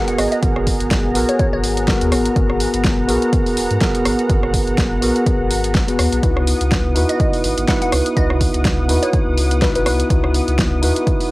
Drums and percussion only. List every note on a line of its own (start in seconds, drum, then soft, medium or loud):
0.08 closed hi-hat medium
0.18 cross-stick medium
0.18 open hi-hat loud
0.32 closed hi-hat medium
0.42 kick loud
0.42 closed hi-hat medium
0.56 cross-stick medium
0.67 kick medium
0.67 open hi-hat loud
0.80 closed hi-hat medium
0.91 kick loud
0.91 snare loud
0.91 closed hi-hat medium
1.15 open hi-hat loud
1.29 closed hi-hat medium
1.39 kick loud
1.39 closed hi-hat medium
1.64 open hi-hat loud
1.77 closed hi-hat medium
1.88 kick loud
1.88 snare loud
1.88 closed hi-hat medium
2.01 closed hi-hat medium
2.12 cross-stick medium
2.12 open hi-hat loud
2.25 closed hi-hat medium
2.36 kick loud
2.36 closed hi-hat medium
2.50 cross-stick medium
2.60 open hi-hat loud
2.74 closed hi-hat medium
2.85 kick loud
2.85 snare loud
2.85 closed hi-hat medium
3.09 open hi-hat loud
3.22 closed hi-hat medium
3.33 kick loud
3.33 closed hi-hat medium
3.46 open hi-hat medium
3.57 open hi-hat loud
3.71 closed hi-hat medium
3.81 kick loud
3.81 snare loud
3.81 closed hi-hat medium
3.95 closed hi-hat medium
4.05 cross-stick medium
4.05 open hi-hat loud
4.19 closed hi-hat medium
4.30 kick loud
4.30 closed hi-hat medium
4.43 cross-stick medium
4.54 kick medium
4.54 open hi-hat loud
4.67 closed hi-hat soft
4.78 kick loud
4.78 snare loud
4.78 closed hi-hat medium
5.02 open hi-hat loud
5.16 closed hi-hat soft
5.26 kick loud
5.26 closed hi-hat medium
5.51 open hi-hat loud
5.64 closed hi-hat soft
5.75 kick loud
5.75 snare loud
5.75 closed hi-hat medium
5.88 closed hi-hat medium
5.99 cross-stick medium
5.99 open hi-hat loud
6.12 closed hi-hat soft
6.23 kick loud
6.23 closed hi-hat medium
6.37 cross-stick medium
6.47 open hi-hat loud
6.61 closed hi-hat soft
6.71 kick loud
6.71 snare loud
6.71 closed hi-hat medium
6.96 open hi-hat loud
7.09 closed hi-hat medium
7.20 kick loud
7.20 closed hi-hat medium
7.33 open hi-hat medium
7.44 open hi-hat loud
7.58 closed hi-hat medium
7.68 kick loud
7.68 snare loud
7.68 closed hi-hat medium
7.82 closed hi-hat medium
7.92 cross-stick medium
7.92 open hi-hat loud
8.06 closed hi-hat medium
8.17 kick loud
8.17 closed hi-hat medium
8.30 cross-stick medium
8.41 kick medium
8.41 open hi-hat loud
8.54 closed hi-hat medium
8.65 kick loud
8.65 snare loud
8.65 closed hi-hat medium
8.89 open hi-hat loud
9.03 closed hi-hat medium
9.13 kick loud
9.13 closed hi-hat medium
9.38 open hi-hat loud
9.51 closed hi-hat soft
9.62 kick loud
9.62 snare loud
9.62 closed hi-hat medium
9.75 closed hi-hat medium
9.86 cross-stick medium
9.86 open hi-hat loud
10.00 closed hi-hat medium
10.10 kick loud
10.10 closed hi-hat medium
10.24 cross-stick medium
10.34 open hi-hat loud
10.48 closed hi-hat medium
10.59 kick loud
10.59 snare loud
10.59 closed hi-hat medium
10.83 open hi-hat loud
10.96 closed hi-hat medium
11.07 kick loud
11.07 closed hi-hat medium
11.21 open hi-hat medium